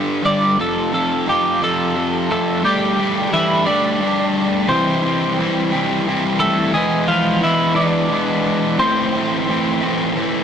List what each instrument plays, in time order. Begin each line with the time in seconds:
Already playing: distorted electric guitar G2 D3 G3, clean electric guitar D5
0.23 distorted electric guitar G2 D3 G3, clean electric guitar D5
0.58 distorted electric guitar F2 C3 F3, clean electric guitar A4
0.92 distorted electric guitar F2 C3 F3, clean electric guitar A4
1.27 distorted electric guitar F2 C3 F3, clean electric guitar G4
1.61 distorted electric guitar F2 C3 F3, clean electric guitar A4
1.95 distorted electric guitar F2 C3 F3
2.30 distorted electric guitar F2 C3 F3, clean electric guitar A3 A4
2.62 distorted electric guitar G3 A3 D4 G4, clean electric guitar G3 G4
2.97 distorted electric guitar A3 D4 G4
3.30 clean electric guitar E3 E4, distorted electric guitar G3 A3 D4 G4
3.65 distorted electric guitar G3 A3 D4 G4, clean electric guitar D4 D5
4.00 distorted electric guitar G3 A3 D4 G4
4.68 distorted electric guitar C3 E3 G3 C4 E4, clean electric guitar C4 C5
5.02 distorted electric guitar G3 C4 E4
5.37 distorted electric guitar E3 G3 C4 E4
5.71 distorted electric guitar C3 E3 G3 C4 E4
6.05 distorted electric guitar E3 G3 C4 E4
6.40 clean electric guitar A3 A4
6.74 distorted electric guitar E3 G#3 B3 E4, clean electric guitar G#3 G#4
7.08 clean electric guitar F3 F4, distorted electric guitar G#3 B3 E4
7.41 distorted electric guitar E3 G#3 B3 E4, clean electric guitar E3 E4
7.75 distorted electric guitar E3 G#3 B3 E4, clean electric guitar D4 D5
8.09 distorted electric guitar E3 G#3 B3 E4
8.77 distorted electric guitar A2 E3 A3 C4 E4, clean electric guitar C4 C5
9.13 distorted electric guitar A3 C4 E4
9.47 distorted electric guitar E3 A3 C4 E4
9.81 distorted electric guitar A2 E3 A3 C4 E4
10.15 distorted electric guitar E3 A3 C4 E4